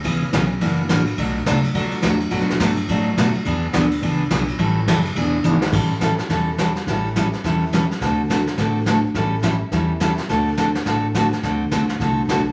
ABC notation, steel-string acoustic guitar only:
X:1
M:4/4
L:1/8
Q:"Swing" 1/4=211
K:Amix
V:1 name="Steel-string acoustic guitar"
[C,E,B,C^G] z [C,E,B,CG] z [E,^A,DF] z [E,A,DF] z | [B,,F,A,DF] z [B,,F,A,DF] z [B,,F,A,DF] z [B,,F,A,DF] z | [B,,F,A,DF] z [B,,F,A,DF] z [B,,F,A,DF] z [B,,F,A,DF] z | [E,B,D^G] z [E,B,DG] z [E,B,DG] z [E,B,DG] z |
[E,G,CEA] z [E,G,CEA] z [E,B,D^G] z [E,B,DG] z | [E,G,CEA] z [E,G,CEA] z [E,G,CEA] z [E,G,CEA] z | [E,G,CEA] z [E,G,CEA] z [E,G,CEA] z [E,G,CEA] z | [D,A,=CFA] z [D,A,CFA] z [D,A,CFA] z [D,A,CFA] z |
[E,G,CEA] z [E,G,CEA] z [E,G,CEA] z [E,G,CEA] z | [D,A,=CFA] z [D,A,CFA] z [D,A,CFA] z [D,A,CFA] z | [D,A,=CFA] z [D,A,CFA] z [D,A,CFA] z [D,A,CFA] z |]